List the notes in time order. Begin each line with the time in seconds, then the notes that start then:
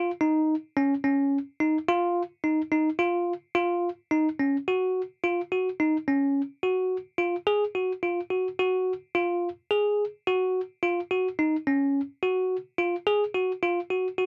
Already playing: F4
0.21 D#4
0.77 C#4
1.04 C#4
1.60 D#4
1.88 F4
2.44 D#4
2.72 D#4
2.99 F4
3.55 F4
4.11 D#4
4.39 C#4
4.68 F#4
5.24 F4
5.52 F#4
5.80 D#4
6.08 C#4
6.63 F#4
7.18 F4
7.47 G#4
7.75 F#4
8.03 F4
8.30 F#4
8.59 F#4
9.15 F4
9.71 G#4
10.27 F#4
10.83 F4
11.11 F#4
11.39 D#4
11.67 C#4
12.23 F#4
12.78 F4
13.07 G#4
13.34 F#4
13.63 F4
13.90 F#4
14.18 F#4